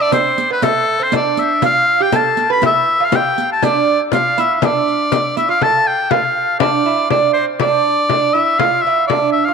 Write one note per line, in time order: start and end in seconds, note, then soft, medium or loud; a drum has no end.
0.00 0.12 D4 medium
0.00 0.13 D5 loud
0.12 0.50 C4 medium
0.12 0.48 C5 medium
0.12 riq medium
0.12 frame drum medium
0.38 riq medium
0.50 0.62 B3 medium
0.50 0.65 B4 medium
0.62 0.97 A3 medium
0.62 1.04 A4 medium
0.62 riq medium
0.62 frame drum medium
1.00 1.13 C4 medium
1.00 1.14 C5 medium
1.12 1.62 D4 medium
1.12 riq medium
1.12 frame drum medium
1.16 1.41 D5 medium
1.37 1.63 E5 medium
1.37 riq soft
1.37 frame drum soft
1.62 2.01 F4 medium
1.62 2.04 F5 loud
1.62 riq medium
1.62 frame drum medium
1.88 frame drum soft
2.00 2.13 G4 medium
2.00 2.17 G5 loud
2.12 2.50 A4 medium
2.12 2.51 A5 medium
2.12 riq medium
2.12 frame drum medium
2.37 riq soft
2.50 2.63 B4 medium
2.50 2.62 B5 loud
2.62 3.00 E4 medium
2.62 riq medium
2.62 frame drum medium
2.66 3.06 E5 loud
2.88 frame drum soft
3.00 3.13 F4 medium
3.00 3.17 F5 medium
3.12 3.64 G4 medium
3.12 3.51 G5 medium
3.12 riq medium
3.12 frame drum medium
3.38 riq soft
3.52 3.65 A5 medium
3.62 3.97 D4 medium
3.62 4.00 D5 loud
3.62 riq medium
3.62 frame drum medium
3.87 frame drum soft
4.12 4.37 F4 medium
4.12 4.41 F5 medium
4.12 riq medium
4.12 frame drum medium
4.38 4.61 E4 medium
4.38 4.55 E5 medium
4.38 riq soft
4.55 4.67 E5 medium
4.62 5.32 D4 medium
4.62 5.37 D5 medium
4.62 riq medium
4.62 frame drum medium
4.87 riq soft
4.87 frame drum soft
5.12 riq medium
5.12 frame drum medium
5.36 5.48 E4 medium
5.36 5.49 E5 medium
5.36 riq soft
5.36 frame drum soft
5.49 5.62 F4 medium
5.49 5.64 F5 loud
5.61 6.13 A4 medium
5.61 5.89 A5 loud
5.61 frame drum medium
5.87 6.12 G5 loud
6.11 6.61 F4 medium
6.11 6.59 F5 medium
6.11 frame drum medium
6.60 6.85 D4 medium
6.60 7.06 D5 loud
6.60 frame drum loud
6.86 7.10 E4 medium
7.10 7.36 D4 medium
7.10 7.33 D5 medium
7.10 frame drum medium
7.33 7.62 C4 medium
7.33 7.45 C5 medium
7.60 8.09 D4 medium
7.60 8.35 D5 loud
7.60 frame drum medium
8.09 8.34 D4 medium
8.09 frame drum medium
8.34 8.60 E4 medium
8.34 8.60 E5 medium
8.58 8.83 F4 medium
8.58 8.83 F5 loud
8.58 frame drum medium
8.81 9.06 E5 medium
8.81 frame drum soft
8.87 9.11 E4 medium
9.07 9.31 D5 medium
9.07 frame drum medium
9.11 9.48 D4 medium
9.32 9.46 E5 medium
9.44 9.54 F4 medium
9.44 9.54 F5 medium